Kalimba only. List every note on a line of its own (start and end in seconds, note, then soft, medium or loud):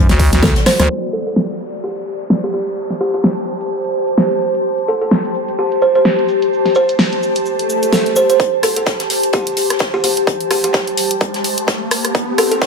0.43 0.64 A4 medium
0.66 0.75 C5 medium
0.80 0.86 C5 medium
1.13 1.22 A4 medium
1.27 1.33 A4 medium
1.84 2.05 G4 medium
2.44 2.50 G4 medium
2.54 2.62 G4 medium
3.01 3.09 G4 medium
3.14 3.20 G4 medium
4.88 4.97 A4 medium
5.01 5.08 A4 medium
5.59 5.80 G4 medium
5.82 5.91 C5 medium
5.95 6.02 C5 medium
6.76 6.97 C5 medium
7.93 8.14 A4 medium
8.16 8.25 C5 medium
8.30 8.36 C5 medium
8.63 8.72 A4 medium
8.77 8.83 A4 medium
9.34 9.55 G4 medium
9.94 10.00 G4 medium
10.04 10.12 G4 medium
10.51 10.59 G4 medium
10.64 10.70 G4 medium
12.38 12.47 A4 medium
12.52 12.58 A4 medium